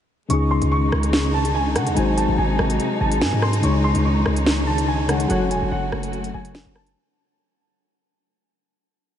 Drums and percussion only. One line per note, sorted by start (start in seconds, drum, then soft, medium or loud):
0.30 closed hi-hat medium
0.62 closed hi-hat medium
0.92 cross-stick medium
1.03 closed hi-hat medium
1.13 snare loud
1.45 closed hi-hat medium
1.76 cross-stick medium
1.76 closed hi-hat medium
1.87 closed hi-hat medium
1.97 closed hi-hat medium
2.18 closed hi-hat medium
2.59 cross-stick medium
2.70 closed hi-hat medium
2.80 closed hi-hat medium
3.12 closed hi-hat medium
3.21 snare loud
3.42 cross-stick medium
3.53 closed hi-hat medium
3.63 closed hi-hat medium
3.95 closed hi-hat medium
4.26 cross-stick medium
4.36 closed hi-hat medium
4.46 snare loud
4.78 closed hi-hat medium
5.09 cross-stick medium
5.09 closed hi-hat medium
5.20 closed hi-hat medium
5.30 closed hi-hat medium
5.51 closed hi-hat medium
5.92 cross-stick medium
6.03 closed hi-hat medium
6.13 closed hi-hat soft
6.24 closed hi-hat medium
6.45 closed hi-hat medium
6.55 snare loud
6.76 cross-stick medium
6.87 closed hi-hat medium